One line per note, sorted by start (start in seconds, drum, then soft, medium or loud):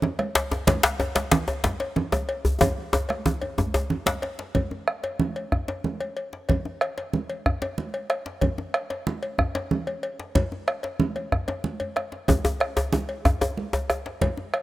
0.02 high conga soft
0.02 djembe tone medium
0.02 low conga medium
0.19 bombo rim medium
0.19 cowbell medium
0.19 high conga medium
0.35 cowbell medium
0.35 djembe slap loud
0.51 bombo rim soft
0.51 djembe slap medium
0.51 high conga soft
0.51 djembe tone medium
0.67 bombo low medium
0.67 cowbell medium
0.67 djembe slap medium
0.67 high conga medium
0.67 low conga loud
0.67 djembe bass medium
0.83 bombo rim soft
0.83 djembe slap loud
1.00 cowbell medium
1.00 djembe tone medium
1.15 bombo rim medium
1.15 cowbell medium
1.15 djembe slap medium
1.15 high conga medium
1.31 djembe slap loud
1.31 low conga loud
1.48 cowbell medium
1.48 djembe slap soft
1.48 djembe tone medium
1.64 bombo low medium
1.64 djembe slap medium
1.64 djembe slap soft
1.64 high conga medium
1.64 djembe bass medium
1.80 cowbell medium
1.80 djembe slap medium
1.96 djembe tone medium
1.96 high conga soft
1.96 low conga medium
2.12 bombo rim medium
2.12 cowbell medium
2.12 djembe tone loud
2.12 high conga medium
2.29 cowbell medium
2.45 bombo rim soft
2.45 djembe tone soft
2.45 high conga soft
2.45 djembe bass medium
2.61 bombo low loud
2.61 cowbell medium
2.61 djembe slap soft
2.61 djembe tone loud
2.61 high conga medium
2.61 low conga medium
2.61 djembe bass medium
2.78 djembe slap soft
2.78 high conga soft
2.93 cowbell medium
2.93 djembe slap soft
2.93 djembe tone loud
2.93 djembe tone medium
3.09 bombo rim medium
3.09 cowbell medium
3.09 djembe slap medium
3.09 high conga medium
3.26 djembe tone loud
3.26 high conga soft
3.26 low conga medium
3.42 cowbell soft
3.42 djembe slap soft
3.42 djembe tone medium
3.58 bombo rim soft
3.58 bombo low loud
3.58 high conga medium
3.58 djembe tone medium
3.58 djembe bass medium
3.74 bombo rim soft
3.74 cowbell medium
3.74 djembe slap medium
3.74 djembe tone loud
3.90 high conga soft
3.90 low conga medium
3.90 djembe bass soft
4.06 bombo rim medium
4.06 cowbell soft
4.06 djembe slap loud
4.06 high conga medium
4.06 djembe bass soft
4.22 bombo rim soft
4.22 cowbell medium
4.22 djembe slap medium
4.39 bombo rim soft
4.39 djembe slap medium
4.39 high conga soft
4.55 bombo low loud
4.55 cowbell medium
4.55 djembe slap soft
4.55 high conga medium
4.55 low conga medium
4.55 djembe bass medium
4.71 djembe slap soft
4.71 djembe tone medium
4.88 bombo rim loud
5.04 cowbell medium
5.04 djembe slap soft
5.19 djembe slap soft
5.19 high conga medium
5.19 low conga medium
5.36 cowbell soft
5.52 bombo rim medium
5.52 bombo low loud
5.52 djembe bass medium
5.68 bombo rim soft
5.68 cowbell soft
5.68 djembe slap medium
5.68 djembe tone medium
5.84 high conga medium
5.84 low conga medium
6.00 cowbell medium
6.00 high conga soft
6.17 cowbell medium
6.33 djembe slap soft
6.49 bombo low loud
6.49 cowbell medium
6.49 djembe slap soft
6.49 high conga medium
6.49 djembe bass medium
6.49 low conga medium
6.65 djembe slap soft
6.65 djembe tone medium
6.81 bombo rim loud
6.81 cowbell medium
6.98 cowbell soft
6.98 djembe slap soft
7.13 high conga medium
7.13 low conga medium
7.29 cowbell soft
7.46 bombo rim loud
7.46 bombo low loud
7.46 djembe bass medium
7.62 bombo rim soft
7.62 cowbell medium
7.62 djembe slap medium
7.62 djembe tone medium
7.78 high conga medium
7.78 low conga medium
7.94 cowbell medium
7.94 high conga soft
8.10 bombo rim loud
8.10 cowbell medium
8.26 djembe slap medium
8.41 bombo low loud
8.41 cowbell medium
8.41 djembe slap soft
8.41 high conga medium
8.41 djembe bass medium
8.41 low conga medium
8.58 djembe slap soft
8.58 djembe tone medium
8.74 bombo rim loud
8.74 cowbell medium
8.90 cowbell medium
8.90 djembe slap medium
9.07 djembe slap soft
9.07 high conga medium
9.07 low conga medium
9.23 cowbell medium
9.38 bombo rim loud
9.38 bombo low loud
9.38 djembe bass medium
9.55 bombo rim soft
9.55 cowbell medium
9.55 djembe slap medium
9.55 djembe tone medium
9.71 high conga medium
9.71 low conga medium
9.87 cowbell medium
9.87 high conga soft
10.03 cowbell medium
10.20 djembe slap medium
10.35 bombo rim soft
10.35 bombo low loud
10.35 cowbell medium
10.35 djembe slap soft
10.35 high conga medium
10.35 low conga medium
10.35 djembe bass medium
10.52 djembe slap soft
10.52 djembe tone medium
10.68 bombo rim loud
10.68 cowbell medium
10.68 djembe slap soft
10.83 bombo rim soft
10.83 cowbell soft
10.83 djembe slap medium
11.00 high conga medium
11.00 low conga medium
11.16 bombo rim soft
11.16 cowbell soft
11.16 high conga soft
11.32 bombo rim medium
11.32 bombo low medium
11.32 djembe slap soft
11.32 djembe bass medium
11.48 cowbell medium
11.48 djembe slap medium
11.48 high conga soft
11.48 djembe tone medium
11.64 high conga medium
11.64 low conga medium
11.80 cowbell medium
11.80 djembe bass soft
11.96 bombo rim loud
11.96 cowbell soft
11.96 djembe slap soft
12.12 djembe slap soft
12.28 bombo low loud
12.28 cowbell medium
12.28 djembe slap soft
12.28 high conga medium
12.28 djembe tone loud
12.28 low conga medium
12.28 djembe bass medium
12.45 djembe slap soft
12.45 djembe tone loud
12.45 djembe tone medium
12.60 bombo rim loud
12.60 cowbell medium
12.77 cowbell medium
12.77 djembe slap medium
12.77 djembe tone loud
12.93 high conga medium
12.93 djembe tone medium
12.93 low conga medium
13.09 cowbell soft
13.25 bombo rim medium
13.25 bombo low medium
13.25 djembe tone loud
13.25 djembe bass medium
13.41 bombo rim soft
13.41 cowbell medium
13.41 djembe slap medium
13.41 djembe tone medium
13.57 high conga medium
13.73 cowbell soft
13.73 djembe tone loud
13.73 high conga soft
13.90 bombo rim loud
13.90 cowbell soft
13.90 djembe tone medium
14.06 djembe slap medium
14.21 bombo low loud
14.21 cowbell medium
14.21 djembe slap soft
14.21 high conga medium
14.21 djembe bass medium
14.21 low conga medium
14.37 djembe slap soft
14.37 djembe tone medium
14.54 bombo rim loud
14.54 cowbell medium